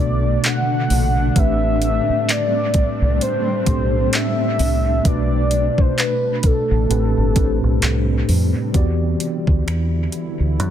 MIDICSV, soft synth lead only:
0, 0, Header, 1, 2, 480
1, 0, Start_track
1, 0, Tempo, 923077
1, 707, Time_signature, 4, 2, 24, 8
1, 5566, End_track
2, 0, Start_track
2, 0, Title_t, "Soft synth lead"
2, 0, Program_c, 0, 80
2, 0, Note_on_c, 0, 74, 109
2, 238, Note_on_c, 0, 78, 114
2, 246, Note_off_c, 0, 74, 0
2, 718, Note_on_c, 0, 76, 119
2, 725, Note_off_c, 0, 78, 0
2, 1197, Note_on_c, 0, 74, 101
2, 1204, Note_off_c, 0, 76, 0
2, 1672, Note_off_c, 0, 74, 0
2, 1676, Note_on_c, 0, 72, 100
2, 2155, Note_on_c, 0, 76, 110
2, 2163, Note_off_c, 0, 72, 0
2, 2634, Note_on_c, 0, 74, 111
2, 2642, Note_off_c, 0, 76, 0
2, 3015, Note_on_c, 0, 72, 92
2, 3023, Note_off_c, 0, 74, 0
2, 3116, Note_on_c, 0, 71, 87
2, 3124, Note_off_c, 0, 72, 0
2, 3356, Note_on_c, 0, 69, 90
2, 3364, Note_off_c, 0, 71, 0
2, 4312, Note_off_c, 0, 69, 0
2, 5566, End_track
0, 0, End_of_file